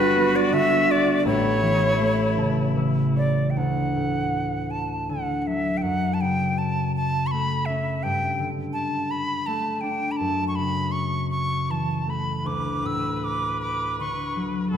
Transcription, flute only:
0.00 0.37 B4 loud
0.36 0.55 D5 medium
0.53 0.93 E5 loud
0.91 1.26 D5 medium
1.27 2.73 C#5 loud
3.17 3.52 D5 medium
3.50 3.59 G5 soft
3.57 4.72 F#5 medium
4.70 5.11 A5 medium
5.10 5.42 F#5 medium
5.42 5.48 F#5 soft
5.47 5.79 E5 medium
5.77 5.83 G5 soft
5.82 6.15 F#5 medium
6.14 6.22 A5 soft
6.21 6.60 G5 medium
6.58 6.95 A5 medium
6.96 7.28 A5 medium
7.27 7.33 C#6 medium
7.31 7.67 B5 medium
7.66 8.05 E5 medium
8.03 8.48 G5 medium
8.73 9.12 A5 medium
9.11 9.48 B5 medium
9.46 9.82 A5 medium
9.81 10.13 G5 medium
10.11 10.18 B5 soft
10.17 10.47 A5 medium
10.48 10.57 C#6 medium
10.55 10.93 B5 medium
10.92 11.30 C#6 medium
11.31 11.72 C#6 medium
11.71 12.11 A5 medium
12.10 12.48 B5 medium
12.46 12.88 D6 medium
12.86 13.17 E6 medium
13.17 13.26 E6 soft
13.24 13.61 D6 medium
13.61 13.96 D6 medium
14.00 14.44 C#6 medium
14.73 14.77 B5 medium

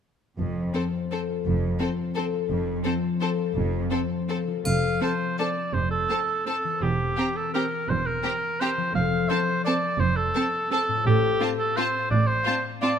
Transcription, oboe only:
4.65 4.99 F5 medium
5.02 5.38 C5 soft
5.39 5.75 D5 medium
5.73 5.90 C5 medium
5.91 6.45 A4 medium
6.46 6.83 A4 medium
6.82 7.38 G4 medium
7.36 7.53 A4 medium
7.53 7.90 A#4 medium
7.89 8.08 C5 medium
8.06 8.61 A#4 medium
8.60 8.94 C5 medium
8.95 9.30 F5 medium
9.29 9.64 C5 medium
9.64 10.01 D5 medium
10.00 10.18 C5 medium
10.16 10.71 A4 medium
10.71 11.05 A4 medium
11.06 11.43 G4 medium
11.58 11.78 A4 medium
11.77 12.10 C5 medium
12.10 12.28 D5 medium
12.27 12.63 C5 medium
12.81 12.98 D5 medium

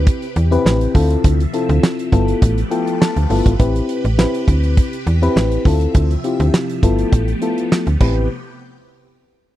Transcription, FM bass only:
0.00 0.10 D2 medium
0.36 0.58 E2 loud
0.66 0.87 A1 loud
0.95 1.16 D2 loud
1.24 1.46 D2 loud
1.69 1.79 D2 loud
2.12 2.34 G1 loud
2.42 2.64 A1 loud
3.16 3.27 D2 medium
3.30 3.42 G1 medium
3.46 3.56 G#1 medium
3.60 3.81 A1 loud
4.05 4.26 A1 loud
4.48 4.81 D2 medium
5.07 5.28 E2 medium
5.36 5.58 A1 loud
5.65 5.87 D2 loud
5.95 6.16 D2 loud
6.40 6.50 D2 loud
6.83 7.05 G1 medium
7.12 7.34 A1 loud
7.87 7.97 D2 medium
8.01 8.28 A1 loud

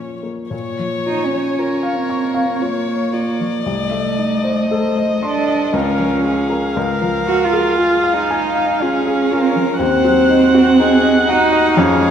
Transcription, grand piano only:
0.00 0.51 A#2 soft
0.00 0.55 F3 soft
0.00 0.23 A#3 soft
0.00 0.55 F4 soft
0.23 0.52 A#3 soft
0.51 3.61 A#2 soft
0.79 1.23 F3 soft
1.06 1.49 F4 soft
1.33 1.75 C#5 soft
1.59 2.00 F4 soft
1.83 2.25 F5 soft
2.10 2.52 C#6 soft
2.34 2.77 F5 soft
2.61 3.03 F4 soft
2.88 3.29 C#5 soft
3.13 3.55 F4 soft
3.40 3.66 F3 soft
3.66 5.70 C2 soft
3.91 4.34 A3 soft
4.19 4.61 D#4 soft
4.44 4.86 C5 soft
4.71 5.13 A4 medium
4.97 5.38 D#5 soft
5.23 5.64 C6 soft
5.48 5.74 D#5 medium
5.73 6.73 C#2 medium
6.00 6.40 F3 soft
6.24 6.65 F4 soft
6.50 6.76 A#4 soft
6.76 9.77 C#2 medium
7.02 7.43 F3 medium
7.28 7.69 F4 soft
7.53 7.94 G#4 soft
7.79 8.20 F4 medium
8.04 8.45 F5 soft
8.30 8.71 G#5 medium
8.56 8.96 F5 medium
8.82 9.22 F4 medium
9.06 9.46 G#4 medium
9.31 9.71 F4 medium
9.56 9.80 F3 medium
9.79 11.72 D#2 medium
10.04 10.44 F#3 medium
10.29 10.68 D#4 medium
10.54 10.94 F#4 medium
10.79 11.18 D#4 medium
11.03 11.43 D#5 medium
11.29 11.68 F#5 medium
11.52 11.77 D#5 medium
11.77 12.11 F2 medium
12.01 12.11 G#3 medium

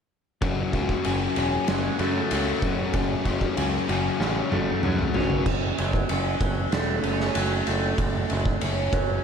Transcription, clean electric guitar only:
0.42 2.93 F#2 medium
1.05 2.97 G#4 medium
1.37 2.62 C#4 medium
1.69 2.30 F#3 medium
1.99 3.57 A3 medium
2.31 3.89 F#3 soft
2.63 3.87 C#4 medium
2.94 4.52 F#2 medium
3.58 5.15 G#4 medium
3.89 5.14 C#4 medium
4.21 4.82 F#3 medium
4.52 5.46 A3 medium
4.83 5.46 F#3 medium
5.15 5.46 C#4 medium
5.46 7.04 F#2 medium
5.78 6.40 F#3 medium
6.10 7.02 C#4 medium
6.41 7.35 F#3 medium
6.72 7.66 A3 medium
7.03 8.60 C#4 medium
7.35 8.29 F#3 medium
7.67 9.23 A3 medium
7.98 9.24 F#2 medium
8.30 8.92 F#3 medium
8.61 9.24 C#4 medium
8.93 9.24 F#3 medium

